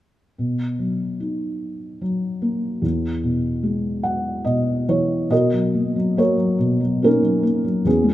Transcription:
0.38 2.80 B2 soft
0.79 2.00 F#3 soft
1.20 2.79 D#4 soft
2.01 2.81 F#3 soft
2.42 2.82 A#3 soft
2.82 5.27 E2 soft
3.23 4.43 B2 soft
3.63 5.27 G#3 soft
4.03 4.43 F#5 soft
4.45 5.28 B2 soft
4.45 4.85 D#5 medium
4.88 5.30 E3 soft
4.88 5.29 C#5 medium
5.30 6.57 B2 soft
5.30 6.17 F#4 soft
5.30 6.17 A#4 soft
5.30 6.20 D#5 medium
5.53 5.94 F#3 soft
5.74 6.16 A#3 soft
5.96 6.36 F#3 soft
6.17 7.01 A#3 soft
6.17 7.41 F#4 soft
6.17 7.03 A#4 soft
6.17 7.06 C#5 medium
6.38 6.79 F#3 soft
6.58 7.81 B2 soft
6.80 7.20 F#3 soft
7.02 7.41 A#3 soft
7.02 7.82 C#4 soft
7.02 7.82 D#4 soft
7.02 7.89 A#4 medium
7.22 7.63 F#3 soft
7.43 7.83 A#3 soft
7.64 7.85 F#3 soft
7.85 8.14 E2 soft
7.85 8.14 B3 soft
7.85 8.14 C#4 soft
7.85 8.14 G#4 medium
8.04 8.14 G#3 soft

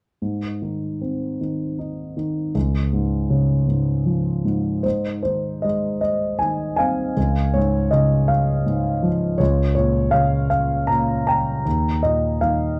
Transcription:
0.22 2.51 G#2 soft
0.62 1.39 D#3 soft
1.02 2.51 C4 soft
1.41 2.15 D#3 soft
1.79 2.53 D#4 soft
2.17 2.54 D#3 soft
2.55 4.80 C#2 soft
2.93 3.66 G#2 soft
3.30 4.80 C#3 soft
3.67 4.43 G#2 soft
4.06 4.82 F3 soft
4.45 4.84 G#2 soft
4.83 7.13 G#2 soft
4.83 5.99 D#4 soft
4.83 5.21 C5 soft
5.23 6.39 D#3 soft
5.23 5.64 C5 soft
5.62 7.13 G#3 soft
5.62 5.99 D#5 soft
6.01 6.37 D#5 soft
6.39 7.15 D#3 soft
6.39 6.75 G#5 soft
6.76 7.16 C4 soft
6.76 7.88 F5 soft
6.76 7.56 G#5 medium
7.17 9.36 C#2 soft
7.54 8.65 G#2 soft
7.54 7.89 C#5 medium
7.91 9.36 C#3 soft
7.91 8.30 D#5 soft
8.28 9.08 F5 soft
8.66 9.38 G#2 soft
9.03 9.39 F3 soft
9.38 11.61 C#2 soft
9.38 10.48 F4 soft
9.38 9.73 C#5 medium
9.75 10.88 A#2 soft
9.75 10.11 C#5 medium
10.11 11.61 C#3 soft
10.11 10.47 F5 medium
10.50 10.90 F5 medium
10.87 11.63 A#2 soft
10.87 11.25 A#5 medium
11.27 11.65 C#4 soft
11.27 12.40 G5 soft
11.27 12.00 A#5 medium
11.65 12.80 D#2 soft
12.03 12.80 A#2 soft
12.03 12.40 D#5 medium
12.41 12.80 D#3 soft
12.41 12.78 F5 soft

